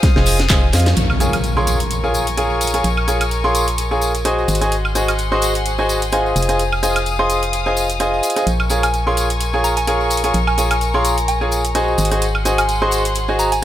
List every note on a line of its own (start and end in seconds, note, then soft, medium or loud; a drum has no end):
0.00 0.93 G#4 medium
0.00 0.95 F5 medium
0.00 0.95 D#6 medium
0.00 kick loud
0.00 snare medium
0.00 closed hi-hat medium
0.00 tambourine soft
0.16 0.48 F1 medium
0.16 0.36 F4 medium
0.16 0.36 G#4 medium
0.16 0.36 C5 medium
0.16 0.36 D#5 medium
0.16 0.36 G#5 medium
0.16 snare medium
0.16 tambourine soft
0.26 open hi-hat loud
0.26 tambourine medium
0.39 snare medium
0.39 closed hi-hat medium
0.39 tambourine soft
0.50 0.71 F1 loud
0.50 0.64 F4 medium
0.50 0.64 G#4 medium
0.50 0.64 C5 medium
0.50 0.64 D#5 medium
0.50 0.64 G#5 loud
0.50 kick loud
0.50 snare medium
0.50 clap loud
0.50 closed hi-hat medium
0.50 tambourine medium
0.63 tambourine soft
0.73 0.95 F2 loud
0.73 0.87 F4 medium
0.73 0.87 G#4 medium
0.73 0.87 C5 medium
0.73 0.87 D#5 medium
0.73 0.87 F5 medium
0.73 snare loud
0.73 open hi-hat medium
0.73 tambourine medium
0.80 closed hi-hat medium
0.86 snare medium
0.86 closed hi-hat medium
0.86 tambourine soft
0.97 2.82 A#1 medium
0.97 4.45 A#4 medium
0.97 4.45 G#5 medium
0.97 4.45 C#6 medium
0.97 closed hi-hat medium
0.97 tambourine soft
0.97 impact medium
0.97 shaker soft
1.10 tambourine soft
1.10 high woodblock medium
1.20 1.34 F4 medium
1.20 1.34 G#4 medium
1.20 1.34 A#4 medium
1.20 1.34 C#5 medium
1.20 1.34 G#5 medium
1.20 closed hi-hat soft
1.20 tambourine medium
1.20 shaker medium
1.33 closed hi-hat soft
1.33 tambourine soft
1.33 high woodblock medium
1.33 shaker soft
1.44 closed hi-hat soft
1.44 tambourine soft
1.44 shaker soft
1.56 1.76 F4 medium
1.56 1.76 G#4 medium
1.56 1.76 A#4 medium
1.56 1.76 C#5 medium
1.56 1.76 C6 loud
1.56 tambourine soft
1.67 closed hi-hat medium
1.67 tambourine medium
1.67 shaker medium
1.80 closed hi-hat soft
1.80 tambourine soft
1.80 shaker soft
1.91 closed hi-hat medium
1.91 tambourine medium
1.91 shaker soft
2.04 2.23 F4 medium
2.04 2.23 G#4 medium
2.04 2.23 A#4 medium
2.04 2.23 C#5 medium
2.04 2.23 G#5 medium
2.04 tambourine soft
2.14 tambourine medium
2.14 shaker medium
2.27 closed hi-hat soft
2.27 tambourine soft
2.27 shaker soft
2.37 2.71 F4 medium
2.37 2.71 G#4 medium
2.37 2.71 A#4 medium
2.37 2.71 C#5 medium
2.37 2.71 G#5 medium
2.37 closed hi-hat medium
2.37 tambourine soft
2.37 shaker soft
2.50 tambourine soft
2.61 closed hi-hat soft
2.61 tambourine medium
2.61 shaker medium
2.67 closed hi-hat medium
2.74 2.85 F4 medium
2.74 2.85 G#4 medium
2.74 2.85 A#4 medium
2.74 2.85 C#5 medium
2.74 2.85 G#5 medium
2.74 closed hi-hat soft
2.74 tambourine soft
2.74 shaker soft
2.84 4.46 A#1 medium
2.84 closed hi-hat medium
2.84 tambourine medium
2.84 shaker soft
2.97 tambourine soft
2.97 high woodblock medium
3.08 3.21 F4 medium
3.08 3.21 G#4 medium
3.08 3.21 A#4 medium
3.08 3.21 C#5 medium
3.08 3.21 G#5 medium
3.08 closed hi-hat soft
3.08 tambourine medium
3.08 shaker medium
3.21 closed hi-hat medium
3.21 tambourine soft
3.21 high woodblock medium
3.21 shaker soft
3.31 closed hi-hat soft
3.31 tambourine soft
3.31 shaker soft
3.44 3.64 F4 medium
3.44 3.64 G#4 medium
3.44 3.64 A#4 medium
3.44 3.64 C#5 medium
3.44 3.64 C6 loud
3.44 tambourine soft
3.55 closed hi-hat medium
3.55 tambourine medium
3.55 shaker medium
3.68 closed hi-hat soft
3.68 tambourine soft
3.68 shaker soft
3.78 closed hi-hat medium
3.78 tambourine soft
3.78 shaker soft
3.91 4.11 F4 medium
3.91 4.11 G#4 medium
3.91 4.11 A#4 medium
3.91 4.11 C#5 medium
3.91 4.11 G#5 medium
3.91 tambourine soft
4.01 tambourine medium
4.01 shaker medium
4.15 closed hi-hat soft
4.15 tambourine soft
4.15 shaker soft
4.25 4.58 F#4 medium
4.25 4.58 G#4 medium
4.25 4.58 C5 medium
4.25 4.58 D#5 medium
4.25 4.58 G#5 loud
4.25 closed hi-hat medium
4.25 tambourine soft
4.25 shaker soft
4.38 tambourine soft
4.48 6.34 G#1 medium
4.48 8.43 G#4 medium
4.48 6.34 F#5 medium
4.48 6.34 C6 medium
4.48 closed hi-hat soft
4.48 tambourine medium
4.48 shaker medium
4.55 closed hi-hat medium
4.61 4.73 F#4 medium
4.61 4.73 G#4 medium
4.61 4.73 C5 medium
4.61 4.73 D#5 medium
4.61 4.73 G#5 medium
4.61 closed hi-hat soft
4.61 tambourine soft
4.61 shaker soft
4.72 closed hi-hat medium
4.72 tambourine medium
4.72 shaker soft
4.85 tambourine soft
4.85 high woodblock medium
4.95 5.09 F#4 medium
4.95 5.09 G#4 medium
4.95 5.09 C5 medium
4.95 5.09 D#5 medium
4.95 5.09 G#5 medium
4.95 closed hi-hat soft
4.95 tambourine medium
4.95 shaker medium
5.08 closed hi-hat soft
5.08 tambourine soft
5.08 high woodblock medium
5.08 shaker soft
5.18 closed hi-hat soft
5.18 tambourine soft
5.18 shaker soft
5.32 5.51 F#4 medium
5.32 5.51 G#4 medium
5.32 5.51 C5 medium
5.32 5.51 D#5 medium
5.32 5.51 C6 loud
5.32 tambourine soft
5.42 closed hi-hat medium
5.42 tambourine medium
5.42 shaker medium
5.55 closed hi-hat soft
5.55 shaker soft
5.66 closed hi-hat medium
5.66 tambourine medium
5.66 shaker soft
5.78 5.98 F#4 medium
5.78 5.98 G#4 medium
5.78 5.98 C5 medium
5.78 5.98 D#5 medium
5.78 5.98 G#5 medium
5.78 tambourine soft
5.89 tambourine medium
5.89 shaker medium
6.02 closed hi-hat soft
6.02 tambourine soft
6.02 shaker soft
6.12 6.46 F4 medium
6.12 6.46 G#4 medium
6.12 6.46 C5 medium
6.12 6.46 D#5 medium
6.12 6.46 G#5 loud
6.12 closed hi-hat medium
6.12 tambourine medium
6.12 shaker soft
6.26 tambourine soft
6.36 8.21 F1 medium
6.36 8.45 F5 medium
6.36 8.45 D#6 medium
6.36 closed hi-hat soft
6.36 tambourine medium
6.36 shaker medium
6.42 closed hi-hat medium
6.49 6.60 F4 medium
6.49 6.60 G#4 medium
6.49 6.60 C5 medium
6.49 6.60 D#5 medium
6.49 6.60 G#5 medium
6.49 closed hi-hat soft
6.49 tambourine soft
6.49 shaker soft
6.59 closed hi-hat medium
6.59 tambourine soft
6.59 shaker soft
6.72 tambourine soft
6.72 high woodblock medium
6.83 6.97 F4 medium
6.83 6.96 G#4 medium
6.83 6.97 C5 medium
6.83 6.97 D#5 medium
6.83 6.97 G#5 medium
6.83 closed hi-hat soft
6.83 tambourine medium
6.83 shaker medium
6.96 closed hi-hat soft
6.96 tambourine soft
6.96 high woodblock medium
6.96 shaker soft
7.06 closed hi-hat soft
7.06 tambourine medium
7.06 shaker soft
7.19 7.39 F4 medium
7.19 7.39 G#4 medium
7.19 7.39 C5 medium
7.19 7.39 D#5 medium
7.19 7.39 C6 loud
7.19 tambourine soft
7.30 closed hi-hat medium
7.30 tambourine medium
7.30 shaker medium
7.43 closed hi-hat soft
7.43 tambourine soft
7.43 shaker soft
7.53 closed hi-hat medium
7.53 tambourine soft
7.53 shaker soft
7.66 7.86 F4 medium
7.66 7.86 G#4 medium
7.66 7.86 C5 medium
7.66 7.86 D#5 medium
7.66 7.86 G#5 medium
7.66 tambourine soft
7.77 tambourine medium
7.77 shaker medium
7.90 closed hi-hat soft
7.90 tambourine soft
7.90 shaker soft
8.00 8.33 F4 medium
8.00 8.33 G#4 medium
8.00 8.33 C5 medium
8.00 8.33 D#5 medium
8.00 8.33 G#5 medium
8.00 closed hi-hat medium
8.00 tambourine soft
8.00 shaker soft
8.14 tambourine soft
8.23 closed hi-hat soft
8.23 tambourine medium
8.23 shaker medium
8.30 closed hi-hat medium
8.36 8.46 F4 medium
8.36 8.46 G#4 medium
8.36 8.46 C5 medium
8.36 8.46 D#5 medium
8.36 8.46 G#5 medium
8.36 closed hi-hat soft
8.36 tambourine soft
8.36 shaker soft
8.47 10.32 A#1 medium
8.47 11.95 A#4 medium
8.47 10.33 G#5 medium
8.47 11.95 C#6 medium
8.47 closed hi-hat medium
8.47 tambourine soft
8.47 shaker soft
8.60 tambourine soft
8.60 high woodblock medium
8.70 8.84 F4 medium
8.70 8.84 G#4 medium
8.70 8.84 A#4 medium
8.70 8.84 C#5 medium
8.70 8.84 G#5 medium
8.70 closed hi-hat soft
8.70 tambourine medium
8.70 shaker medium
8.83 9.01 G#5 medium
8.83 closed hi-hat soft
8.83 tambourine soft
8.83 high woodblock medium
8.83 shaker soft
8.94 closed hi-hat soft
8.94 tambourine soft
8.94 shaker soft
9.07 9.26 F4 medium
9.07 9.26 G#4 medium
9.07 9.26 A#4 medium
9.07 9.26 C#5 medium
9.07 9.26 C6 loud
9.07 tambourine soft
9.17 closed hi-hat medium
9.17 tambourine medium
9.17 shaker medium
9.30 closed hi-hat soft
9.30 tambourine soft
9.30 shaker soft
9.41 closed hi-hat medium
9.41 tambourine soft
9.41 shaker soft
9.53 9.73 F4 medium
9.53 9.73 G#4 medium
9.53 9.73 A#4 medium
9.53 9.73 C#5 medium
9.53 9.73 G#5 medium
9.53 tambourine soft
9.64 9.74 A#5 medium
9.64 tambourine medium
9.64 shaker medium
9.77 9.95 G#5 medium
9.77 closed hi-hat soft
9.77 tambourine soft
9.77 shaker soft
9.87 10.21 F4 medium
9.87 10.21 G#4 medium
9.87 10.21 A#4 medium
9.87 10.21 C#5 medium
9.87 10.21 G#5 loud
9.87 closed hi-hat medium
9.87 tambourine soft
9.87 shaker soft
10.01 tambourine soft
10.10 closed hi-hat soft
10.10 tambourine medium
10.10 shaker medium
10.17 closed hi-hat medium
10.24 10.35 F4 medium
10.24 10.35 G#4 medium
10.24 10.35 A#4 medium
10.24 10.35 C#5 medium
10.24 10.35 G#5 medium
10.24 closed hi-hat soft
10.24 tambourine soft
10.24 shaker soft
10.34 11.96 A#1 medium
10.34 11.97 A#5 medium
10.34 closed hi-hat medium
10.34 tambourine soft
10.34 shaker soft
10.47 10.54 G#5 medium
10.47 tambourine soft
10.47 high woodblock medium
10.58 10.71 F4 medium
10.58 10.72 G#4 medium
10.58 10.71 A#4 medium
10.58 10.72 C#5 medium
10.58 10.71 G#5 medium
10.58 10.66 G#5 medium
10.58 closed hi-hat soft
10.58 tambourine medium
10.58 shaker medium
10.71 11.26 G#5 medium
10.71 closed hi-hat soft
10.71 tambourine soft
10.71 high woodblock medium
10.71 shaker soft
10.81 closed hi-hat soft
10.81 tambourine medium
10.81 shaker soft
10.93 11.14 F4 loud
10.93 11.14 G#4 medium
10.93 11.14 A#4 medium
10.93 11.14 C#5 medium
10.93 11.14 C6 loud
10.93 tambourine soft
11.05 closed hi-hat medium
11.05 tambourine medium
11.05 shaker medium
11.18 closed hi-hat soft
11.18 tambourine soft
11.18 shaker soft
11.28 11.65 G#5 medium
11.28 closed hi-hat medium
11.28 tambourine soft
11.28 shaker soft
11.41 11.61 F4 medium
11.41 11.61 G#4 medium
11.41 11.61 A#4 medium
11.41 11.61 C#5 medium
11.41 11.61 G#5 medium
11.41 tambourine soft
11.52 tambourine medium
11.52 shaker medium
11.65 closed hi-hat soft
11.65 tambourine soft
11.65 shaker soft
11.75 12.08 F#4 medium
11.75 12.08 G#4 medium
11.75 12.08 C5 medium
11.75 12.08 D#5 medium
11.75 12.08 G#5 loud
11.75 closed hi-hat medium
11.75 tambourine soft
11.75 shaker soft
11.88 tambourine soft
11.98 13.64 G#1 medium
11.98 13.64 G#4 medium
11.98 13.64 F#5 medium
11.98 13.64 C6 medium
11.98 closed hi-hat soft
11.98 tambourine medium
11.98 shaker medium
12.05 closed hi-hat medium
12.12 12.23 F#4 medium
12.12 12.23 G#4 medium
12.12 12.23 C5 medium
12.12 12.23 D#5 medium
12.12 12.23 G#5 medium
12.12 closed hi-hat medium
12.12 tambourine soft
12.12 shaker soft
12.22 closed hi-hat medium
12.22 tambourine soft
12.22 shaker soft
12.35 tambourine soft
12.35 high woodblock medium
12.45 12.59 F#4 medium
12.45 12.59 G#4 medium
12.45 12.59 C5 medium
12.45 12.59 D#5 medium
12.45 12.59 G#5 medium
12.45 closed hi-hat soft
12.45 tambourine medium
12.45 shaker medium
12.58 12.76 G#5 medium
12.58 closed hi-hat medium
12.58 tambourine soft
12.58 high woodblock medium
12.58 shaker soft
12.69 closed hi-hat soft
12.69 tambourine medium
12.69 shaker soft
12.82 13.01 F#4 medium
12.82 13.01 G#4 medium
12.82 13.01 C5 medium
12.82 13.01 D#5 medium
12.82 13.01 C6 loud
12.82 tambourine soft
12.91 closed hi-hat medium
12.91 tambourine medium
12.91 shaker medium
13.05 closed hi-hat medium
13.05 tambourine soft
13.05 shaker soft
13.15 closed hi-hat medium
13.15 tambourine medium
13.15 shaker soft
13.28 13.48 F#4 medium
13.28 13.48 G#4 medium
13.28 13.48 C5 medium
13.28 13.48 D#5 medium
13.28 13.48 G#5 medium
13.28 tambourine soft
13.39 13.50 A#5 medium
13.39 tambourine medium
13.39 shaker medium
13.52 13.64 G#5 medium
13.52 closed hi-hat medium
13.52 tambourine soft
13.52 shaker soft